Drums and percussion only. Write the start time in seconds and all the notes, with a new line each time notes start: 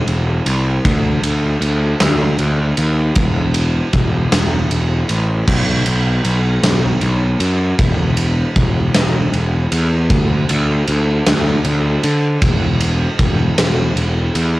0.08 ride
0.46 ride
0.85 kick, ride
1.24 ride
1.62 ride
2.00 snare, ride
2.39 ride
2.77 ride
3.15 kick, ride
3.54 ride
3.93 kick, ride
4.32 snare, ride
4.71 ride
5.09 ride
5.47 kick, crash
5.86 ride
6.25 ride
6.63 snare, ride
7.01 ride
7.40 ride
7.79 kick, ride
8.17 ride
8.56 kick, ride
8.94 snare, ride
9.33 ride
9.72 ride
10.10 kick, ride
10.49 ride
10.88 ride
11.27 snare, ride
11.65 ride
12.03 ride
12.42 kick, ride
12.80 ride
13.19 kick, ride
13.58 snare, ride
13.97 ride
14.35 ride